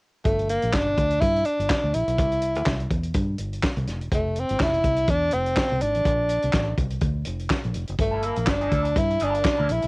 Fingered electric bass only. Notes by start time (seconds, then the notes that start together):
0.26 G1
0.63 A#1
0.73 G1
0.98 D2
1.22 G2
1.59 G1
1.84 D2
1.94 A#1
2.07 B1
2.19 C2
2.56 D2
2.67 C2
2.91 E2
3.15 G2
3.39 G1
3.77 C2
3.87 F1
4.02 E1
4.12 F1
4.50 G1
4.60 F1
4.85 C2
5.08 E2
5.33 F1
5.72 C2
5.82 G#1
5.96 A1
6.05 A#1
6.44 C2
6.54 A1
6.78 C2
7.02 D2
7.27 F1
7.65 A#1
7.75 F1
7.89 F#1
7.99 G1
8.37 A#1
8.48 G1
8.72 D2
8.96 G2
9.22 G1
9.60 D2
9.70 A#1
9.84 B1